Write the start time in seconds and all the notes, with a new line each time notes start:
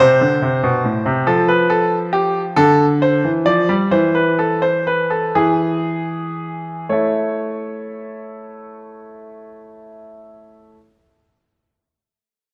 0.00 C3 C5
0.21 D3
0.42 C3
0.63 B2
0.84 A2
1.06 C3
1.27 F3 A4
1.48 B4
1.70 A4
2.13 G4
2.56 D3 A4
3.02 C5
3.24 E3
3.45 F3 D5
3.69 G3
3.91 E3 C5
4.15 B4
4.39 A4
4.62 C5
4.87 B4
5.10 A4
5.35 E3 G#4
6.89 A3 E4 A4 C#5